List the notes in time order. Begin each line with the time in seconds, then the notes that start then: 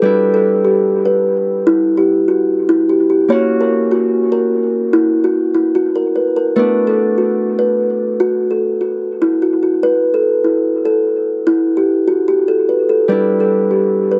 0.02 G3 D4 E4 B4
0.34 A4
0.65 G4
1.05 B4
1.67 E4
1.97 G4
2.28 F#4
2.69 E4
2.89 G4
3.10 G4
3.28 A#3 C#4 F#4 C#5
3.61 A#4
3.91 F#4
4.32 A#4
4.93 E4
5.24 F#4
5.54 E4
5.75 F#4
5.96 A#4
6.16 B4
6.36 A#4
6.56 A3 B3 D4 B4
6.87 A4
7.18 F#4
7.59 B4
8.20 F#4
8.51 A4
8.81 F#4
9.22 E4
9.42 F#4
9.63 F#4
9.83 B4
10.14 A4
10.44 E4
10.85 A4
11.47 E4
11.77 G4
12.08 F#4
12.28 G4
12.48 A4
12.69 B4
12.89 A4
13.08 G3 D4 E4 B4
13.40 A4
13.71 G4
14.12 B4